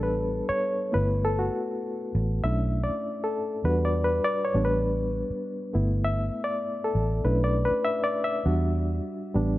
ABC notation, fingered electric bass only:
X:1
M:4/4
L:1/16
Q:1/4=100
K:Glyd
V:1 name="Fingered electric bass" clef=bass
A,,,3 z3 G,,,4 z4 A,,,2 | B,,,3 z4 z E,,4 z2 A,,,2- | A,,,3 z3 G,,,4 z4 A,,,2 | B,,,3 z4 z E,,4 z2 A,,,2 |]